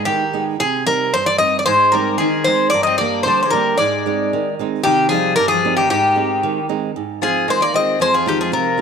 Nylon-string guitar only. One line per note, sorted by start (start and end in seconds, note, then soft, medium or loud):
0.00 0.23 G#3 medium
0.00 0.23 B3 soft
0.00 0.23 D#4 medium
0.07 0.58 D#3 medium
0.33 0.54 G#3 medium
0.33 0.55 B3 medium
0.33 0.55 D#4 medium
0.60 1.12 C3 medium
0.86 1.29 G3 soft
0.86 1.29 C4 soft
0.86 1.29 D#4 medium
1.14 1.65 G2 medium
1.40 1.61 G3 medium
1.40 1.61 C4 medium
1.40 1.62 D#4 medium
1.66 2.18 G#2 medium
1.93 2.35 G#3 medium
1.93 2.36 C4 soft
1.93 2.36 D#4 medium
2.20 2.71 D#3 medium
2.46 2.67 G#3 soft
2.46 2.68 C4 soft
2.46 2.68 D#4 medium
2.73 3.25 G2 medium
3.00 3.42 G3 medium
3.00 3.42 A#3 soft
3.00 3.42 D4 medium
3.26 3.77 D3 medium
3.52 3.74 G3 medium
3.52 3.74 A#3 soft
3.52 3.74 D4 medium
3.79 4.30 G#2 medium
4.06 4.48 G#3 medium
4.06 4.48 C4 soft
4.06 4.49 D#4 medium
4.33 4.84 D#3 medium
4.59 4.80 G#3 medium
4.59 4.81 C4 medium
4.59 4.81 D#4 medium
4.86 5.36 C3 medium
5.11 5.53 G3 soft
5.11 5.54 C4 soft
5.11 5.54 D#4 medium
5.39 5.89 G2 medium
5.65 5.85 G3 medium
5.65 5.86 C4 medium
5.65 5.86 D#4 medium
5.91 6.42 G#2 medium
6.16 6.58 G#3 medium
6.16 6.59 C4 soft
6.16 6.59 D#4 medium
6.43 6.94 D#3 medium
6.69 6.90 G#3 medium
6.69 6.90 C4 soft
6.69 6.90 D#4 medium
6.96 7.47 G#2 medium
7.22 7.63 G#3 soft
7.22 7.64 C4 soft
7.22 7.64 F4 medium
7.48 7.99 D#3 medium
7.74 7.95 G#3 soft
7.74 7.95 C4 soft
7.74 7.95 F4 medium
8.00 8.51 F2 medium
8.26 8.68 G#3 soft
8.26 8.68 C4 soft
8.26 8.68 F4 medium
8.52 8.81 C3 medium
8.78 8.81 G#3 medium